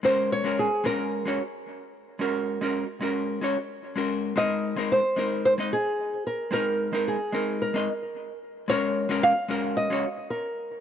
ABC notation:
X:1
M:4/4
L:1/16
Q:"Swing 16ths" 1/4=111
K:Bbm
V:1 name="Nylon-string guitar"
c2 d2 A2 B8- B2- | B12 z4 | e4 c4 c2 A4 B2 | B4 A4 B6 z2 |
d4 f4 e4 B4 |]
V:2 name="Hollow-body jazz guitar"
[A,DGB]3 [A,DGB]2 z [A,DGB]3 [A,DGd] z6 | [A,DGB]3 [A,DGB]2 z [A,DGB]3 [A,DGd] z3 [A,DGB]3 | [A,CEB]3 [A,CEB]2 z [A,CEB]3 [A,CEe] z6 | [A,CEB]3 [A,CEB]2 z [A,CEB]3 [A,CEe] z6 |
[A,DGB]3 [A,DGB]2 z [A,DGB]3 [A,DGd] z6 |]